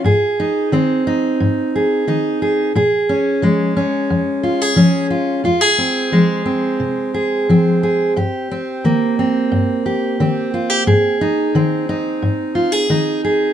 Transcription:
\new Staff \with { instrumentName = "Steel-string acoustic guitar" } { \time 4/4 \key bes \dorian \tempo 4 = 89 << { aes'8 ees'8 c'8 ees'4 aes'8 ees'8 aes'8 | aes'8 des'8 aes8 des'4 f'16 aes'16 des'8 f'8 | f'16 aes'16 c'8 aes8 c'4 aes'8 c'8 aes'8 | g'8 c'8 bes8 c'4 g'8 c'8 f'16 g'16 |
aes'8 ees'8 c'8 ees'4 f'16 aes'16 ees'8 aes'8 | } \\ { aes,4 ees4 aes,4 ees4 | bes,4 f4 f,4 f4 | f,4 f4 c4 f4 | g,4 ees4 g,4 ees4 |
aes,4 ees4 aes,4 ees4 | } >> }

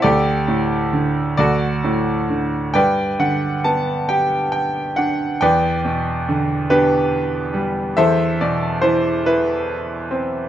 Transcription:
<<
  \new Staff \with { instrumentName = "Grand piano" } { \time 6/8 \key g \major \tempo 4. = 46 << { d''4. d''4. | g''8 fis''8 a''8 g''8 g''8 fis''8 | g''4. b'4. | e''8 d''8 c''8 b'4. | } \\ { <g' a'>4. <fis' a'>4. | <b' d''>4. r4. | <b' d''>4. <d' g'>4. | <a' c''>4. r4. | } >> }
  \new Staff \with { instrumentName = "Grand piano" } { \clef bass \time 6/8 \key g \major d,8 a,8 d8 d,8 a,8 d8 | g,8 d8 b8 g'4 d'8 | e,8 b,8 d8 b4 g8 | e,8 b,8 e8 e'4 c'8 | }
>>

